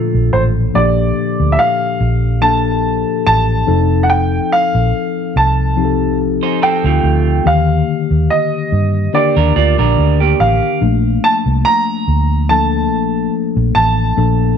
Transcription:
Already playing: tine electric piano A#2 F3 D4 A4, clean electric guitar A3 F4
0.14 fingered electric bass A#1
0.33 fingered electric bass A1, grand piano C5
0.74 fingered electric bass A#1, tine electric piano F3 A#3 D4 G4, grand piano D5
1.40 fingered electric bass D2
1.52 grand piano E5
1.59 grand piano F5
2.00 fingered electric bass A#1
2.41 tine electric piano F3 A#3 D4 A4, grand piano A5
3.27 fingered electric bass A1, grand piano A5
3.67 fingered electric bass F1, tine electric piano F3 C4 D#4 A4
4.03 grand piano F#5
4.10 grand piano G5
4.52 grand piano F5
4.75 fingered electric bass A#1
5.36 fingered electric bass C2, grand piano A5
5.77 tine electric piano F3 C4 D#4 G4
5.85 tine electric piano A4
6.43 clean electric guitar D#4 C5
6.62 clean electric guitar C4 A4, grand piano G5
6.84 fingered electric bass D2, clean electric guitar A3 F4
7.04 fingered electric bass D2
7.44 fingered electric bass D#2, tine electric piano D3 D#3 A#3 G4, grand piano F5
8.11 fingered electric bass D#2
8.30 grand piano D#5
8.72 fingered electric bass G2
9.13 tine electric piano D3 A#3 D4 A#4, clean electric guitar A#3 G4, grand piano D5
9.36 fingered electric bass D#2, clean electric guitar D4 A#4
9.56 fingered electric bass D2, clean electric guitar F4 D5
9.78 fingered electric bass A#1, clean electric guitar D4 A#4
9.98 fingered electric bass D2
10.20 clean electric guitar A#3 G4
10.40 fingered electric bass A1, grand piano F5
10.81 fingered electric bass A#1, tine electric piano F3 A3 A#3 D4
11.24 grand piano A5
11.46 fingered electric bass C2
11.65 grand piano A#5
12.08 fingered electric bass D2
12.49 tine electric piano F3 A#3 D4 A4, grand piano A5
12.92 fingered electric bass A#1
13.57 fingered electric bass A#1
13.75 fingered electric bass A1, grand piano A5
14.17 fingered electric bass A#1, tine electric piano F3 A#3 D4 A4

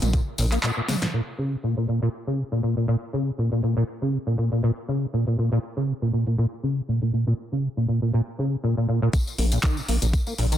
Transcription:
0.02 analog synth bass A#1, acid bass A#2, closed hi-hat, mid tom, tambourine
0.13 acid bass A#2, kick, closed hi-hat, tambourine
0.38 analog synth bass A#1, acid bass A#2, open hi-hat, tambourine
0.52 acid bass A#3, clap, closed hi-hat, tambourine
0.63 acid bass A#2, clap, closed hi-hat, tambourine
0.77 acid bass A#2
0.88 acid bass C#3, snare, mid tom, open hi-hat, tambourine
1.02 acid bass A#2, snare, closed hi-hat, tambourine
1.13 acid bass A#2
1.38 acid bass C#3
1.52 acid bass C3
1.63 acid bass A#2
1.77 acid bass A#2
1.88 acid bass A#2
2.02 acid bass A#2
2.27 acid bass C#3
2.38 acid bass C3
2.52 acid bass A#2
2.63 acid bass A#2
2.77 acid bass A#2
2.88 acid bass A#2
3.13 acid bass C#3
3.27 acid bass C3
3.38 acid bass A#2
3.52 acid bass A#2
3.63 acid bass A#2
3.77 acid bass A#2
4.02 acid bass C#3
4.13 acid bass C3
4.27 acid bass A#2
4.38 acid bass A#2
4.52 acid bass A#2
4.63 acid bass A#2
4.88 acid bass C#3
5.02 acid bass C3
5.13 acid bass A#2
5.27 acid bass A#2
5.38 acid bass A#2
5.52 acid bass A#2
5.77 acid bass C#3
5.88 acid bass C3
6.02 acid bass A#2
6.13 acid bass A#2
6.27 acid bass A#2
6.38 acid bass A#2
6.63 acid bass C#3
6.77 acid bass C3
6.88 acid bass A#2
7.02 acid bass A#2
7.13 acid bass A#2
7.27 acid bass A#2
7.52 acid bass C#3
7.63 acid bass C3
7.77 acid bass A#2
7.88 acid bass A#2
8.02 acid bass A#2
8.13 acid bass A#2
8.38 acid bass C#3
8.52 acid bass C3
8.63 acid bass A#2
8.77 acid bass A#2
8.89 acid bass A#2
9.02 acid bass A#2
9.13 acid bass A#2, kick, closed hi-hat, tambourine
9.27 tambourine
9.38 analog synth bass A#1, acid bass A#3, open hi-hat
9.52 acid bass A#2, closed hi-hat, tambourine
9.62 acid bass D#3, kick, clap, closed hi-hat, tambourine
9.77 acid bass A#2, tambourine
9.88 analog synth bass A#1, acid bass A#3, open hi-hat
10.02 analog synth bass A#1, acid bass A#2, closed hi-hat, tambourine
10.13 kick, closed hi-hat, tambourine
10.26 acid bass A#3, tambourine
10.38 analog synth bass A#1, acid bass A#2, open hi-hat
10.52 acid bass D#3, closed hi-hat, tambourine

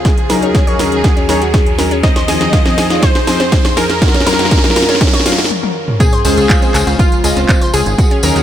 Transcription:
Already playing: digital synth lead G#4, violin section G#4, riser
0.05 ambient pad D#2 D#3 C#4 F#4, kick, snare, closed hi-hat
0.18 closed hi-hat
0.30 supersaw synth F#3 C#4 D#4 A#4, synth pluck A#4, snare, open hi-hat
0.42 synth pluck C#4, closed hi-hat
0.55 synth pluck C#4, kick, snare, closed hi-hat
0.67 synth pluck C#5, closed hi-hat
0.79 supersaw synth F#3 C#4 D#4 A#4, synth pluck A#4, snare, open hi-hat
0.92 supersaw synth F#3 C#4 D#4 A#4, closed hi-hat
1.04 synth pluck F#4, kick, snare, closed hi-hat
1.17 synth pluck C#4, closed hi-hat
1.29 supersaw synth F#3 C#4 D#4 C#5, synth pluck A#4, snare, open hi-hat
1.42 synth pluck F#4, closed hi-hat
1.54 kick, snare, closed hi-hat
1.66 closed hi-hat
1.79 supersaw synth F#3 C#4 D#4 A#4, synth pluck A#4, snare, open hi-hat
1.91 synth pluck C#4, closed hi-hat
2.03 ambient pad F2 F3 D#4 G#4, synth pluck C4, violin section D#5, digital synth lead D#5, kick, snare, closed hi-hat
2.16 synth pluck C5, snare, closed hi-hat
2.28 supersaw synth F3 C4 D#4 G#4, synth pluck G#4, snare, open hi-hat
2.41 snare, closed hi-hat
2.53 synth pluck F4, kick, snare, closed hi-hat
2.66 synth pluck C4, snare, closed hi-hat
2.78 supersaw synth F3 C4 D#4 G#4, synth pluck G#4, snare, open hi-hat
2.90 supersaw synth F3 C4 D#4 G#4, synth pluck F4, snare, closed hi-hat
3.03 violin section C5, digital synth lead C5, kick, snare, closed hi-hat
3.15 snare, closed hi-hat
3.27 supersaw synth F3 C4 D#4 C5, synth pluck G#4, snare, open hi-hat
3.40 synth pluck C4, snare, closed hi-hat
3.52 synth pluck C4, kick, snare, closed hi-hat
3.65 synth pluck C5, snare, closed hi-hat
3.77 supersaw synth F3 C4 D#4 G#4, synth pluck G#4, violin section A#4, digital synth lead A#4, snare, open hi-hat
3.90 snare, closed hi-hat
4.02 ambient pad F#2 F#3 F4 A#4, synth pluck F#4, kick, snare, closed hi-hat
4.08 snare
4.14 synth pluck C#4, snare, closed hi-hat
4.20 snare
4.26 supersaw synth F#3 C#4 F4 A#4, synth pluck A#4, snare, open hi-hat
4.33 snare
4.39 synth pluck F#4, snare, closed hi-hat
4.45 snare
4.51 kick, snare, closed hi-hat
4.58 snare
4.64 snare, closed hi-hat
4.70 snare
4.76 supersaw synth F#3 C#4 F4 A#4, synth pluck A#4, snare, open hi-hat
4.82 snare
4.89 supersaw synth F#3 C#4 F4 A#4, synth pluck C#4, snare, closed hi-hat
4.95 snare
5.01 synth pluck C#4, kick, snare, closed hi-hat
5.07 snare
5.13 synth pluck C#5, snare, closed hi-hat
5.20 snare
5.26 supersaw synth F#3 C#4 F4 A#4, synth pluck F4, snare, open hi-hat
5.32 snare
5.38 snare, closed hi-hat
5.44 snare
5.51 high tom
5.63 high tom
5.88 mid tom
6.00 ambient pad C#3 G#3 F4 C5, synth pluck C4, violin section G#4, digital synth lead G#4, kick, closed hi-hat, tambourine, sub drop
6.13 synth pluck C5, closed hi-hat
6.25 analog synth bass C#2, supersaw synth G#3 C#4 F4 C5, synth pluck G#4, open hi-hat, tambourine
6.37 analog synth bass C#2, closed hi-hat, tambourine
6.50 synth pluck F4, kick, clap, closed hi-hat, tambourine
6.62 synth pluck C4, closed hi-hat, tambourine
6.74 analog synth bass C#2, supersaw synth G#3 C#4 F4 C5, synth pluck G#4, clap, open hi-hat, tambourine
6.87 analog synth bass C#2, supersaw synth G#3 C#4 F4 C5, synth pluck F4, closed hi-hat, tambourine
6.99 violin section F4, digital synth lead F4, kick, closed hi-hat, tambourine
7.12 closed hi-hat, tambourine
7.24 analog synth bass C#2, supersaw synth G#3 C#4 F4 D#5, synth pluck G#4, open hi-hat, tambourine
7.37 analog synth bass C#2, synth pluck C4, closed hi-hat, tambourine
7.49 synth pluck C4, kick, clap, closed hi-hat, tambourine
7.61 synth pluck C5, closed hi-hat, tambourine
7.73 analog synth bass C#2, supersaw synth G#3 C#4 F4 C5, violin section G#4, synth pluck G#4, digital synth lead G#4, open hi-hat, tambourine
7.86 analog synth bass G#1, closed hi-hat, tambourine
7.98 ambient pad D#3 A#3 C#4 F#4, synth pluck F#4, kick, closed hi-hat, tambourine
8.11 synth pluck C#4, closed hi-hat
8.23 analog synth bass D#2, supersaw synth F#3 C#4 D#4 A#4, synth pluck A#4, open hi-hat, tambourine
8.36 analog synth bass D#2, synth pluck F#4, closed hi-hat, tambourine

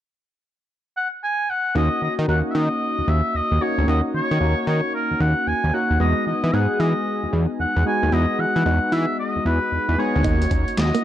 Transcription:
0.97 oboe F#5
1.24 oboe G#5
1.50 oboe F#5
1.75 analog synth bass D#2, synth keys A#3 C#4 D#4 F#4, oboe D#5
2.02 analog synth bass D#3, oboe D#5
2.19 analog synth bass D#3
2.28 analog synth bass D#2, synth keys A#3 C#4 D#4 F#4, oboe F#5
2.51 oboe E5
2.55 analog synth bass D#3, oboe D#5
2.98 analog synth bass D#2
3.08 analog synth bass D#2, oboe E5
3.35 analog synth bass D#2, oboe D#5
3.51 analog synth bass D#2
3.61 synth keys A#3 C#4 D#4 F#4, oboe C#5
3.78 analog synth bass D2
3.87 analog synth bass D#2, synth keys A#3 C#4 D#4 F#4, oboe D#5
4.14 analog synth bass D#3, oboe C#5
4.31 analog synth bass D#3
4.41 analog synth bass D#2, synth keys A#3 C#4 D#4 F#4
4.67 analog synth bass D#3, oboe C#5
4.95 oboe A#4
5.11 analog synth bass D#2
5.20 analog synth bass D#2, oboe F#5
5.47 analog synth bass D#2, oboe G#5
5.64 analog synth bass D#2
5.73 synth keys A#3 C#4 D#4 F#4, oboe F#5
5.90 analog synth bass D#2
6.00 analog synth bass E2, synth keys G#3 B3 D#4 F#4, oboe D#5
6.27 analog synth bass E3, oboe D#5
6.44 analog synth bass E3
6.53 analog synth bass G#2, synth keys G#3 B3 D#4 G#4, oboe F#5
6.80 analog synth bass E3, oboe D#5
7.23 analog synth bass E2
7.33 analog synth bass E2
7.59 analog synth bass E2, oboe F#5
7.76 analog synth bass E2
7.86 synth keys G#3 B3 D#4 F#4, oboe G#5
8.03 analog synth bass D#2
8.12 analog synth bass E2, synth keys G#3 B3 D#4 F#4, oboe D#5
8.39 analog synth bass E3, oboe F#5
8.56 analog synth bass E3
8.65 analog synth bass E2, synth keys G#3 B3 D#4 F#4
8.92 analog synth bass E3, oboe E5
9.19 oboe D#5
9.36 analog synth bass E2
9.45 analog synth bass E2, oboe B4
9.72 analog synth bass E2
9.89 analog synth bass E2
9.98 synth keys G#3 B3 D#4 G#4, oboe C#5
10.16 analog synth bass D2
10.24 analog synth bass D#2, synth keys A#3 C#4 D#4 F#4, clean electric guitar D#4, kick, closed hi-hat
10.42 muted clean electric guitar stroke, closed hi-hat
10.51 analog synth bass D#2, clean electric guitar C#4, kick, closed hi-hat
10.68 closed hi-hat
10.77 analog synth bass D#2, synth keys A#3 C#4 D#4 E4, oboe D#5, snare, clap, closed hi-hat
10.85 synth keys F#4
10.95 clean electric guitar A#3, closed hi-hat

